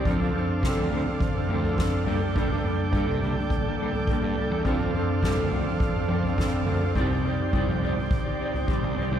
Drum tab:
SD |----o-------o---|----------------|----o-------o---|----------------|
T2 |--o------o--o-o-|--o-------------|--o------o--o-o-|--o-------------|
FT |oo---oooo--oo-o-|oo---oooo--oo-o-|oo---oooo--oo-o-|oo---oooo--o--o-|
BD |o---o---o---o---|o---o---o---o---|o---o---o---o---|o---o---o---o---|